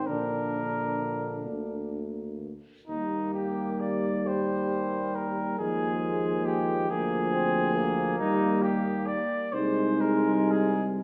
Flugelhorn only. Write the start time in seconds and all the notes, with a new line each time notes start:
0.07 A#4
2.88 D#4
3.34 G4
3.81 D5
4.27 C5
5.15 A#4
5.59 G#4
6.46 G4
6.90 G#4
8.18 D#4
8.62 G4
9.07 D5
9.53 C5
10.01 A#4
10.51 G#4